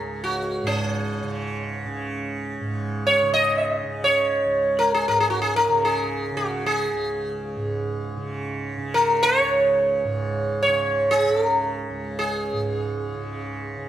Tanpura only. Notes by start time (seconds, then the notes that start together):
Already playing: G#2 C#3
0.00 C#2
0.63 G#2
1.23 C#3
1.86 C#3
2.60 G#2
3.22 C#3
3.83 C#3
4.45 C#2
5.08 G#2
5.69 C#3
6.32 C#3
6.94 C#2
7.56 G#2
8.17 C#3
8.78 C#3
9.41 C#2
10.04 G#2
10.68 C#3
11.28 C#3
11.90 C#2
12.53 G#2
13.14 C#3
13.77 C#3